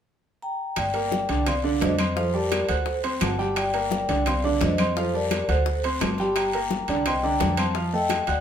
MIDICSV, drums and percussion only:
0, 0, Header, 1, 2, 480
1, 0, Start_track
1, 0, Key_signature, -2, "minor"
1, 0, Tempo, 349447
1, 1054, Time_signature, 4, 2, 24, 8
1, 11545, End_track
2, 0, Start_track
2, 0, Title_t, "Drums"
2, 1045, Note_on_c, 9, 63, 31
2, 1049, Note_on_c, 9, 65, 88
2, 1052, Note_on_c, 9, 60, 64
2, 1053, Note_on_c, 9, 75, 63
2, 1062, Note_on_c, 9, 74, 65
2, 1182, Note_off_c, 9, 63, 0
2, 1186, Note_off_c, 9, 65, 0
2, 1190, Note_off_c, 9, 60, 0
2, 1190, Note_off_c, 9, 75, 0
2, 1199, Note_off_c, 9, 74, 0
2, 1287, Note_on_c, 9, 65, 58
2, 1290, Note_on_c, 9, 63, 31
2, 1425, Note_off_c, 9, 65, 0
2, 1428, Note_off_c, 9, 63, 0
2, 1530, Note_on_c, 9, 66, 59
2, 1530, Note_on_c, 9, 73, 68
2, 1532, Note_on_c, 9, 63, 93
2, 1539, Note_on_c, 9, 60, 60
2, 1667, Note_off_c, 9, 66, 0
2, 1668, Note_off_c, 9, 73, 0
2, 1669, Note_off_c, 9, 63, 0
2, 1676, Note_off_c, 9, 60, 0
2, 1770, Note_on_c, 9, 65, 67
2, 1780, Note_on_c, 9, 63, 34
2, 1780, Note_on_c, 9, 73, 66
2, 1908, Note_off_c, 9, 65, 0
2, 1917, Note_off_c, 9, 73, 0
2, 1918, Note_off_c, 9, 63, 0
2, 2012, Note_on_c, 9, 60, 66
2, 2013, Note_on_c, 9, 65, 88
2, 2016, Note_on_c, 9, 74, 68
2, 2020, Note_on_c, 9, 63, 33
2, 2020, Note_on_c, 9, 64, 83
2, 2026, Note_on_c, 9, 75, 60
2, 2149, Note_off_c, 9, 60, 0
2, 2151, Note_off_c, 9, 65, 0
2, 2153, Note_off_c, 9, 74, 0
2, 2157, Note_off_c, 9, 63, 0
2, 2157, Note_off_c, 9, 64, 0
2, 2163, Note_off_c, 9, 75, 0
2, 2263, Note_on_c, 9, 63, 34
2, 2401, Note_off_c, 9, 63, 0
2, 2492, Note_on_c, 9, 65, 67
2, 2492, Note_on_c, 9, 66, 83
2, 2498, Note_on_c, 9, 63, 86
2, 2501, Note_on_c, 9, 60, 69
2, 2501, Note_on_c, 9, 61, 78
2, 2501, Note_on_c, 9, 73, 66
2, 2629, Note_off_c, 9, 65, 0
2, 2629, Note_off_c, 9, 66, 0
2, 2636, Note_off_c, 9, 63, 0
2, 2638, Note_off_c, 9, 73, 0
2, 2639, Note_off_c, 9, 60, 0
2, 2639, Note_off_c, 9, 61, 0
2, 2727, Note_on_c, 9, 65, 91
2, 2736, Note_on_c, 9, 73, 72
2, 2737, Note_on_c, 9, 63, 77
2, 2745, Note_on_c, 9, 75, 71
2, 2865, Note_off_c, 9, 65, 0
2, 2873, Note_off_c, 9, 73, 0
2, 2874, Note_off_c, 9, 63, 0
2, 2882, Note_off_c, 9, 75, 0
2, 2977, Note_on_c, 9, 60, 67
2, 2978, Note_on_c, 9, 63, 33
2, 2982, Note_on_c, 9, 74, 65
2, 3114, Note_off_c, 9, 60, 0
2, 3116, Note_off_c, 9, 63, 0
2, 3119, Note_off_c, 9, 74, 0
2, 3215, Note_on_c, 9, 63, 34
2, 3352, Note_off_c, 9, 63, 0
2, 3457, Note_on_c, 9, 65, 95
2, 3457, Note_on_c, 9, 66, 59
2, 3458, Note_on_c, 9, 60, 61
2, 3459, Note_on_c, 9, 63, 56
2, 3460, Note_on_c, 9, 73, 67
2, 3469, Note_on_c, 9, 75, 68
2, 3595, Note_off_c, 9, 65, 0
2, 3595, Note_off_c, 9, 66, 0
2, 3596, Note_off_c, 9, 60, 0
2, 3596, Note_off_c, 9, 63, 0
2, 3598, Note_off_c, 9, 73, 0
2, 3606, Note_off_c, 9, 75, 0
2, 3689, Note_on_c, 9, 65, 69
2, 3693, Note_on_c, 9, 60, 35
2, 3699, Note_on_c, 9, 73, 68
2, 3702, Note_on_c, 9, 63, 35
2, 3827, Note_off_c, 9, 65, 0
2, 3830, Note_off_c, 9, 60, 0
2, 3836, Note_off_c, 9, 73, 0
2, 3839, Note_off_c, 9, 63, 0
2, 3926, Note_on_c, 9, 60, 63
2, 3939, Note_on_c, 9, 74, 71
2, 3943, Note_on_c, 9, 63, 33
2, 4063, Note_off_c, 9, 60, 0
2, 4076, Note_off_c, 9, 74, 0
2, 4080, Note_off_c, 9, 63, 0
2, 4174, Note_on_c, 9, 65, 72
2, 4175, Note_on_c, 9, 60, 34
2, 4177, Note_on_c, 9, 63, 35
2, 4311, Note_off_c, 9, 65, 0
2, 4312, Note_off_c, 9, 60, 0
2, 4314, Note_off_c, 9, 63, 0
2, 4410, Note_on_c, 9, 65, 89
2, 4410, Note_on_c, 9, 66, 81
2, 4416, Note_on_c, 9, 60, 67
2, 4416, Note_on_c, 9, 61, 82
2, 4420, Note_on_c, 9, 73, 65
2, 4421, Note_on_c, 9, 63, 83
2, 4422, Note_on_c, 9, 75, 66
2, 4547, Note_off_c, 9, 65, 0
2, 4547, Note_off_c, 9, 66, 0
2, 4553, Note_off_c, 9, 60, 0
2, 4553, Note_off_c, 9, 61, 0
2, 4558, Note_off_c, 9, 63, 0
2, 4558, Note_off_c, 9, 73, 0
2, 4559, Note_off_c, 9, 75, 0
2, 4658, Note_on_c, 9, 60, 34
2, 4660, Note_on_c, 9, 73, 70
2, 4795, Note_off_c, 9, 60, 0
2, 4798, Note_off_c, 9, 73, 0
2, 4894, Note_on_c, 9, 65, 89
2, 4896, Note_on_c, 9, 63, 33
2, 4901, Note_on_c, 9, 75, 65
2, 4902, Note_on_c, 9, 60, 69
2, 4910, Note_on_c, 9, 74, 65
2, 5031, Note_off_c, 9, 65, 0
2, 5033, Note_off_c, 9, 63, 0
2, 5039, Note_off_c, 9, 60, 0
2, 5039, Note_off_c, 9, 75, 0
2, 5048, Note_off_c, 9, 74, 0
2, 5134, Note_on_c, 9, 65, 61
2, 5140, Note_on_c, 9, 63, 32
2, 5271, Note_off_c, 9, 65, 0
2, 5278, Note_off_c, 9, 63, 0
2, 5369, Note_on_c, 9, 63, 94
2, 5373, Note_on_c, 9, 66, 63
2, 5379, Note_on_c, 9, 60, 63
2, 5381, Note_on_c, 9, 73, 68
2, 5506, Note_off_c, 9, 63, 0
2, 5510, Note_off_c, 9, 66, 0
2, 5517, Note_off_c, 9, 60, 0
2, 5518, Note_off_c, 9, 73, 0
2, 5616, Note_on_c, 9, 65, 70
2, 5624, Note_on_c, 9, 73, 68
2, 5753, Note_off_c, 9, 65, 0
2, 5761, Note_off_c, 9, 73, 0
2, 5851, Note_on_c, 9, 65, 87
2, 5854, Note_on_c, 9, 63, 33
2, 5854, Note_on_c, 9, 64, 77
2, 5859, Note_on_c, 9, 75, 63
2, 5863, Note_on_c, 9, 74, 67
2, 5869, Note_on_c, 9, 60, 69
2, 5989, Note_off_c, 9, 65, 0
2, 5992, Note_off_c, 9, 63, 0
2, 5992, Note_off_c, 9, 64, 0
2, 5997, Note_off_c, 9, 75, 0
2, 6000, Note_off_c, 9, 74, 0
2, 6006, Note_off_c, 9, 60, 0
2, 6104, Note_on_c, 9, 63, 36
2, 6104, Note_on_c, 9, 64, 74
2, 6241, Note_off_c, 9, 63, 0
2, 6241, Note_off_c, 9, 64, 0
2, 6330, Note_on_c, 9, 65, 67
2, 6330, Note_on_c, 9, 66, 77
2, 6335, Note_on_c, 9, 63, 78
2, 6337, Note_on_c, 9, 60, 69
2, 6337, Note_on_c, 9, 61, 86
2, 6341, Note_on_c, 9, 73, 71
2, 6467, Note_off_c, 9, 65, 0
2, 6467, Note_off_c, 9, 66, 0
2, 6472, Note_off_c, 9, 63, 0
2, 6474, Note_off_c, 9, 60, 0
2, 6474, Note_off_c, 9, 61, 0
2, 6478, Note_off_c, 9, 73, 0
2, 6571, Note_on_c, 9, 65, 88
2, 6575, Note_on_c, 9, 63, 82
2, 6577, Note_on_c, 9, 73, 75
2, 6579, Note_on_c, 9, 75, 67
2, 6708, Note_off_c, 9, 65, 0
2, 6713, Note_off_c, 9, 63, 0
2, 6715, Note_off_c, 9, 73, 0
2, 6717, Note_off_c, 9, 75, 0
2, 6820, Note_on_c, 9, 74, 68
2, 6821, Note_on_c, 9, 63, 32
2, 6823, Note_on_c, 9, 60, 66
2, 6957, Note_off_c, 9, 74, 0
2, 6958, Note_off_c, 9, 63, 0
2, 6961, Note_off_c, 9, 60, 0
2, 7056, Note_on_c, 9, 63, 34
2, 7194, Note_off_c, 9, 63, 0
2, 7292, Note_on_c, 9, 63, 56
2, 7294, Note_on_c, 9, 65, 92
2, 7294, Note_on_c, 9, 66, 62
2, 7296, Note_on_c, 9, 60, 61
2, 7296, Note_on_c, 9, 75, 68
2, 7301, Note_on_c, 9, 73, 69
2, 7429, Note_off_c, 9, 63, 0
2, 7432, Note_off_c, 9, 65, 0
2, 7432, Note_off_c, 9, 66, 0
2, 7433, Note_off_c, 9, 60, 0
2, 7433, Note_off_c, 9, 75, 0
2, 7438, Note_off_c, 9, 73, 0
2, 7529, Note_on_c, 9, 63, 35
2, 7534, Note_on_c, 9, 60, 35
2, 7539, Note_on_c, 9, 65, 68
2, 7544, Note_on_c, 9, 73, 67
2, 7667, Note_off_c, 9, 63, 0
2, 7671, Note_off_c, 9, 60, 0
2, 7676, Note_off_c, 9, 65, 0
2, 7681, Note_off_c, 9, 73, 0
2, 7775, Note_on_c, 9, 60, 68
2, 7779, Note_on_c, 9, 63, 33
2, 7781, Note_on_c, 9, 74, 69
2, 7912, Note_off_c, 9, 60, 0
2, 7916, Note_off_c, 9, 63, 0
2, 7919, Note_off_c, 9, 74, 0
2, 8018, Note_on_c, 9, 60, 35
2, 8019, Note_on_c, 9, 63, 34
2, 8024, Note_on_c, 9, 65, 72
2, 8155, Note_off_c, 9, 60, 0
2, 8157, Note_off_c, 9, 63, 0
2, 8161, Note_off_c, 9, 65, 0
2, 8252, Note_on_c, 9, 63, 79
2, 8255, Note_on_c, 9, 73, 63
2, 8259, Note_on_c, 9, 65, 86
2, 8259, Note_on_c, 9, 66, 81
2, 8261, Note_on_c, 9, 60, 68
2, 8261, Note_on_c, 9, 61, 81
2, 8266, Note_on_c, 9, 75, 65
2, 8390, Note_off_c, 9, 63, 0
2, 8392, Note_off_c, 9, 73, 0
2, 8396, Note_off_c, 9, 65, 0
2, 8396, Note_off_c, 9, 66, 0
2, 8398, Note_off_c, 9, 60, 0
2, 8398, Note_off_c, 9, 61, 0
2, 8404, Note_off_c, 9, 75, 0
2, 8490, Note_on_c, 9, 73, 70
2, 8492, Note_on_c, 9, 60, 34
2, 8627, Note_off_c, 9, 73, 0
2, 8630, Note_off_c, 9, 60, 0
2, 8731, Note_on_c, 9, 63, 31
2, 8732, Note_on_c, 9, 60, 69
2, 8733, Note_on_c, 9, 74, 68
2, 8739, Note_on_c, 9, 65, 89
2, 8741, Note_on_c, 9, 75, 67
2, 8869, Note_off_c, 9, 60, 0
2, 8869, Note_off_c, 9, 63, 0
2, 8870, Note_off_c, 9, 74, 0
2, 8876, Note_off_c, 9, 65, 0
2, 8879, Note_off_c, 9, 75, 0
2, 8970, Note_on_c, 9, 63, 35
2, 8975, Note_on_c, 9, 65, 63
2, 9107, Note_off_c, 9, 63, 0
2, 9113, Note_off_c, 9, 65, 0
2, 9209, Note_on_c, 9, 63, 88
2, 9211, Note_on_c, 9, 73, 69
2, 9212, Note_on_c, 9, 60, 64
2, 9218, Note_on_c, 9, 66, 59
2, 9347, Note_off_c, 9, 63, 0
2, 9348, Note_off_c, 9, 73, 0
2, 9350, Note_off_c, 9, 60, 0
2, 9356, Note_off_c, 9, 66, 0
2, 9451, Note_on_c, 9, 65, 67
2, 9455, Note_on_c, 9, 63, 33
2, 9455, Note_on_c, 9, 73, 67
2, 9588, Note_off_c, 9, 65, 0
2, 9592, Note_off_c, 9, 73, 0
2, 9593, Note_off_c, 9, 63, 0
2, 9693, Note_on_c, 9, 65, 95
2, 9693, Note_on_c, 9, 74, 68
2, 9694, Note_on_c, 9, 60, 63
2, 9698, Note_on_c, 9, 63, 32
2, 9698, Note_on_c, 9, 64, 77
2, 9708, Note_on_c, 9, 75, 67
2, 9830, Note_off_c, 9, 74, 0
2, 9831, Note_off_c, 9, 65, 0
2, 9832, Note_off_c, 9, 60, 0
2, 9835, Note_off_c, 9, 63, 0
2, 9835, Note_off_c, 9, 64, 0
2, 9845, Note_off_c, 9, 75, 0
2, 9934, Note_on_c, 9, 63, 34
2, 10071, Note_off_c, 9, 63, 0
2, 10168, Note_on_c, 9, 65, 70
2, 10168, Note_on_c, 9, 66, 76
2, 10174, Note_on_c, 9, 60, 73
2, 10174, Note_on_c, 9, 61, 85
2, 10176, Note_on_c, 9, 63, 84
2, 10180, Note_on_c, 9, 73, 71
2, 10305, Note_off_c, 9, 65, 0
2, 10305, Note_off_c, 9, 66, 0
2, 10311, Note_off_c, 9, 60, 0
2, 10311, Note_off_c, 9, 61, 0
2, 10313, Note_off_c, 9, 63, 0
2, 10317, Note_off_c, 9, 73, 0
2, 10404, Note_on_c, 9, 65, 94
2, 10414, Note_on_c, 9, 63, 78
2, 10415, Note_on_c, 9, 73, 68
2, 10428, Note_on_c, 9, 75, 66
2, 10542, Note_off_c, 9, 65, 0
2, 10551, Note_off_c, 9, 63, 0
2, 10553, Note_off_c, 9, 73, 0
2, 10565, Note_off_c, 9, 75, 0
2, 10643, Note_on_c, 9, 60, 66
2, 10652, Note_on_c, 9, 63, 35
2, 10652, Note_on_c, 9, 74, 66
2, 10780, Note_off_c, 9, 60, 0
2, 10790, Note_off_c, 9, 63, 0
2, 10790, Note_off_c, 9, 74, 0
2, 10891, Note_on_c, 9, 63, 34
2, 11028, Note_off_c, 9, 63, 0
2, 11119, Note_on_c, 9, 60, 59
2, 11127, Note_on_c, 9, 65, 94
2, 11127, Note_on_c, 9, 66, 61
2, 11128, Note_on_c, 9, 73, 71
2, 11134, Note_on_c, 9, 63, 56
2, 11141, Note_on_c, 9, 75, 64
2, 11257, Note_off_c, 9, 60, 0
2, 11264, Note_off_c, 9, 65, 0
2, 11264, Note_off_c, 9, 66, 0
2, 11265, Note_off_c, 9, 73, 0
2, 11271, Note_off_c, 9, 63, 0
2, 11278, Note_off_c, 9, 75, 0
2, 11358, Note_on_c, 9, 60, 33
2, 11363, Note_on_c, 9, 65, 70
2, 11366, Note_on_c, 9, 73, 68
2, 11373, Note_on_c, 9, 63, 33
2, 11496, Note_off_c, 9, 60, 0
2, 11500, Note_off_c, 9, 65, 0
2, 11503, Note_off_c, 9, 73, 0
2, 11511, Note_off_c, 9, 63, 0
2, 11545, End_track
0, 0, End_of_file